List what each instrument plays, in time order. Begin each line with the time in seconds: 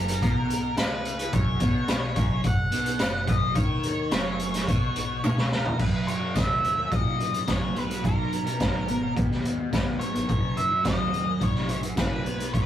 Already playing: fingered electric bass F#1, distorted electric guitar F#2, lead electric guitar A#4
0.08 closed hi-hat
0.21 fingered electric bass B1, distorted electric guitar B2, kick, closed hi-hat
0.50 closed hi-hat
0.77 fingered electric bass C#2, distorted electric guitar C#3, lead electric guitar B4, snare, closed hi-hat, tambourine
1.05 closed hi-hat
1.19 closed hi-hat
1.32 fingered electric bass F#1, distorted electric guitar F#2, lead electric guitar C#5, kick, closed hi-hat
1.60 fingered electric bass B1, distorted electric guitar B2, kick, closed hi-hat
1.88 snare, closed hi-hat, tambourine
2.15 fingered electric bass F#1, distorted electric guitar F#2, kick, closed hi-hat
2.43 fingered electric bass F#1, distorted electric guitar F#2, kick, closed hi-hat
2.47 lead electric guitar F#5
2.71 fingered electric bass B1, distorted electric guitar B2, closed hi-hat
2.86 closed hi-hat
2.99 fingered electric bass F#1, distorted electric guitar F#2, snare, closed hi-hat, tambourine
3.26 fingered electric bass F#1, distorted electric guitar F#2, lead electric guitar D#5, kick, closed hi-hat
3.54 fingered electric bass D#2, distorted electric guitar D#3, lead electric guitar C#5, kick, closed hi-hat
3.83 closed hi-hat
4.11 fingered electric bass F#1, distorted electric guitar F#2, snare, closed hi-hat, tambourine
4.39 closed hi-hat
4.54 snare, closed hi-hat
4.67 fingered electric bass B1, distorted electric guitar B2, kick, closed hi-hat
4.96 closed hi-hat
5.23 fingered electric bass C#2, distorted electric guitar C#3, high tom, tambourine
5.38 snare
5.52 lead electric guitar A#4, snare
5.65 floor tom
5.78 distorted electric guitar F#2 C#3 F#3, fingered electric bass F#2, lead electric guitar B4, kick, crash
6.07 fingered electric bass F#3, lead electric guitar C#5, closed hi-hat
6.20 distorted electric guitar C#3 F#3
6.34 fingered electric bass D#2, distorted electric guitar F#2 C#3 F#3, lead electric guitar E5, kick, snare, closed hi-hat, tambourine
6.63 distorted electric guitar F#2 C#3 F#3, closed hi-hat
6.76 muted distorted electric guitar stroke
6.90 distorted electric guitar F#2 C#3 F#3, fingered electric bass A#2, lead electric guitar D#5, kick, closed hi-hat
7.17 distorted electric guitar F#2 C#3 F#3, closed hi-hat
7.32 muted distorted electric guitar stroke, closed hi-hat
7.46 fingered electric bass C#2, distorted electric guitar F#2 C#3 F#3, kick, snare, closed hi-hat, tambourine
7.51 lead electric guitar C#5
7.73 fingered electric bass B1, distorted electric guitar B2 F#3 B3, closed hi-hat
7.78 lead electric guitar B4
7.88 distorted electric guitar F#3 B3, closed hi-hat
8.01 distorted electric guitar B2 F#3 B3, lead electric guitar A#4, kick, closed hi-hat
8.32 fingered electric bass B2, closed hi-hat
8.45 distorted electric guitar F#3 B3, closed hi-hat
8.59 fingered electric bass G#1, distorted electric guitar B2 F#3 B3, kick, snare, closed hi-hat, tambourine
8.87 distorted electric guitar B2 F#3 B3, closed hi-hat
9.01 muted distorted electric guitar stroke
9.15 fingered electric bass D#2, distorted electric guitar B2 F#3 B3, kick, closed hi-hat
9.31 snare
9.44 distorted electric guitar B2 F#3 B3, closed hi-hat
9.59 muted distorted electric guitar stroke
9.71 fingered electric bass D#2, distorted electric guitar B2 F#3 B3, kick, snare, closed hi-hat, tambourine
9.99 distorted electric guitar B2 F#3 B3, lead electric guitar C#5, closed hi-hat
10.14 fingered electric bass G#1, distorted electric guitar F#3 B3, closed hi-hat
10.28 fingered electric bass F#1, distorted electric guitar F#2 C#3 F#3, kick, closed hi-hat
10.57 fingered electric bass F#2, lead electric guitar E5, closed hi-hat
10.69 distorted electric guitar C#3 F#3
10.83 fingered electric bass D#2, distorted electric guitar F#2 C#3 F#3, lead electric guitar D#5, kick, snare, closed hi-hat, tambourine
11.11 distorted electric guitar F#2 C#3 F#3, closed hi-hat
11.26 muted distorted electric guitar stroke
11.40 fingered electric bass A#1, distorted electric guitar F#2 C#3 F#3, lead electric guitar C#5, kick, closed hi-hat
11.55 snare
11.68 distorted electric guitar F#2 C#3 F#3, lead electric guitar C#5, closed hi-hat
11.83 muted distorted electric guitar stroke, closed hi-hat
11.96 distorted electric guitar F#2 C#3 F#3, fingered electric bass F#2, lead electric guitar B4, kick, snare, closed hi-hat, tambourine
12.24 fingered electric bass B1, distorted electric guitar B2 F#3 B3, closed hi-hat
12.39 distorted electric guitar F#3 B3, closed hi-hat
12.52 distorted electric guitar B2 F#3 B3, lead electric guitar C#5, kick, closed hi-hat
12.62 lead electric guitar B4